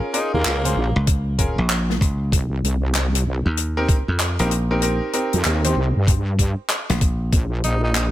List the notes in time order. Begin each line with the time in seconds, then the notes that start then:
Already playing: C#4 F4 G#4 A#4
0.14 C#4 D#4 F4 G#4 A#4, closed hi-hat
0.34 D#2 A#3
0.44 C#2, clap, closed hi-hat
0.65 C#4 F4 G#4 C5, closed hi-hat
0.76 A#1
0.96 C#2
1.07 kick, closed hi-hat
1.38 C#4 F4 G#4 A#4, kick, closed hi-hat
1.58 A#1
1.69 clap, closed hi-hat
1.90 snare
2.01 C#2, kick, closed hi-hat
2.32 C2, kick, closed hi-hat
2.63 C2, closed hi-hat
2.95 clap, closed hi-hat
3.15 closed hi-hat
3.26 C2
3.46 D#2
3.57 closed hi-hat
3.77 C4 D#4 G4 A#4
3.88 D2, kick, closed hi-hat
4.08 F2
4.19 clap, closed hi-hat
4.39 A#1 C4 D#4 G4 A#4, closed hi-hat
4.51 closed hi-hat
4.71 C4 D#4 G4 A#4
4.82 C4 D#4 G4 A#4, closed hi-hat
5.13 C4 D#4 G4 A#4, closed hi-hat
5.33 F2, closed hi-hat
5.45 D#2, clap, closed hi-hat
5.64 C4 D#4 G4 C5, closed hi-hat
5.76 C2
5.96 G2
6.07 kick, closed hi-hat
6.39 kick, closed hi-hat
6.70 clap, closed hi-hat
6.89 A#1, snare, closed hi-hat
7.01 kick, closed hi-hat
7.32 A#1, kick, closed hi-hat
7.64 A#1 D#4, closed hi-hat
7.84 D#4
7.95 D#4, clap, closed hi-hat